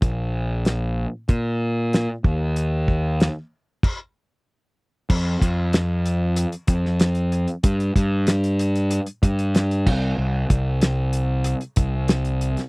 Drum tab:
CC |----------------|--------x-------|x---------------|--------------x-|
HH |x---x---x---x---|x---x-----------|--x-x-x-xxx-xxxx|xxx-xxxxxxxxxx--|
SD |----o-------o---|----o-----------|----o------oo---|----o-------o---|
BD |o-------o-----o-|--o-----o-------|o-o-------o-----|o-o-------o---o-|

CC |----------------|
HH |--x-x-x-xxx-xxxx|
SD |----o-------o--o|
BD |--o-------o-----|